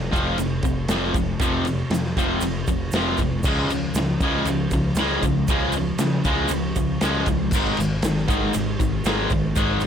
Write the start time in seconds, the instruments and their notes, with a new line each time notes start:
Already playing: overdriven electric guitar F2 C3
0.11 picked electric bass F1, overdriven electric guitar F2 C3 F3, kick, ride, shaker
0.38 picked electric bass F1, overdriven electric guitar F2 C3, ride, shaker
0.63 picked electric bass F1, overdriven electric guitar F2 C3, kick, ride, shaker
0.88 picked electric bass F1, overdriven electric guitar F2 C3 F3, snare, ride, shaker
1.13 picked electric bass F1, overdriven electric guitar C3, kick, ride, shaker
1.17 overdriven electric guitar F2
1.39 picked electric bass F1, overdriven electric guitar F2 C3 F3, kick, ride, shaker
1.65 overdriven electric guitar F2 C3, ride, shaker
1.90 picked electric bass F2, overdriven electric guitar F2 C3, snare, ride
1.94 shaker
2.05 snare
2.16 picked electric bass F1, overdriven electric guitar F2 C3 F3, kick, ride, shaker
2.41 picked electric bass F1, overdriven electric guitar F2 C3, ride, shaker
2.67 picked electric bass F1, overdriven electric guitar F2 C3, kick, ride, shaker
2.92 picked electric bass F1, overdriven electric guitar F2, snare, ride, shaker
2.96 overdriven electric guitar C3 F3
3.17 picked electric bass F1, overdriven electric guitar F2, kick, ride, shaker
3.22 overdriven electric guitar C3
3.43 picked electric bass C#2, overdriven electric guitar C#3, kick, crash, shaker
3.47 overdriven electric guitar F3 G#3
3.68 picked electric bass C#2, ride, shaker
3.72 overdriven electric guitar C#3 F3
3.94 picked electric bass C#2, overdriven electric guitar C#3 F3, snare, ride, shaker
4.19 picked electric bass C#2, overdriven electric guitar C#3 F3, kick, ride, shaker
4.24 overdriven electric guitar G#3
4.45 picked electric bass C#2, overdriven electric guitar C#3 F3, ride, shaker
4.71 picked electric bass C#2, overdriven electric guitar C#3 F3, kick, ride, shaker
4.95 picked electric bass C#2, snare, ride, shaker
4.99 overdriven electric guitar C#3 F3 G#3
5.22 picked electric bass C#2, overdriven electric guitar C#3 F3, kick, ride, shaker
5.48 picked electric bass C#2, overdriven electric guitar C#3 F3 G#3, kick, ride, shaker
5.72 ride, shaker
5.77 overdriven electric guitar C#3 F3
5.98 picked electric bass C#3, overdriven electric guitar C#3 F3, snare, ride, shaker
6.24 picked electric bass C#2, overdriven electric guitar C#3 F3 G#3, kick, ride, shaker
6.48 picked electric bass C#2, overdriven electric guitar C#3 F3, ride, shaker
6.75 picked electric bass C#2, overdriven electric guitar C#3 F3, kick, ride, shaker
7.01 picked electric bass C#2, overdriven electric guitar C#3 F3 G#3, snare, ride, shaker
7.26 picked electric bass C#2, overdriven electric guitar C#3 F3, kick, ride, shaker
7.51 picked electric bass G#1, overdriven electric guitar G#2, kick, crash, shaker
7.55 overdriven electric guitar D#3 G#3
7.77 picked electric bass G#1, overdriven electric guitar G#2 D#3, ride, shaker
8.02 picked electric bass G#1, overdriven electric guitar G#2 D#3, snare, ride, shaker
8.16 snare
8.28 picked electric bass G#1, overdriven electric guitar G#2 D#3 G#3, kick, ride, shaker
8.53 picked electric bass G#1, overdriven electric guitar G#2 D#3, ride, shaker
8.80 picked electric bass G#1, overdriven electric guitar G#2 D#3, kick, ride, shaker
9.04 picked electric bass G#1, overdriven electric guitar G#2 D#3 G#3, snare, ride, shaker
9.30 picked electric bass G#1, overdriven electric guitar G#2 D#3, kick, ride, shaker
9.56 picked electric bass G#1, overdriven electric guitar G#2 D#3 G#3, kick, ride, shaker
9.80 overdriven electric guitar G#2, ride, shaker